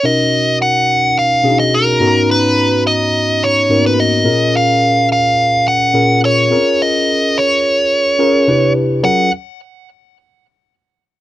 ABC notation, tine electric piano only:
X:1
M:4/4
L:1/8
Q:1/4=107
K:F#
V:1 name="Tine electric piano"
[B,,CDFA]3 z2 [B,,C=D^DFG]2 [G,,B,CDF=A^a]- | [G,,B,CDF=A^a]2 z3 [G,,A,B,CDF^A]2 [A,,CEGA]- | [A,,CEGA]2 z3 [A,,CEGA]2 [^B,CEGA]- | [^B,CEGA]2 z3 [CEGA] [=C,=D=E=G=B]2 |
[F,CEGA] z6 z |]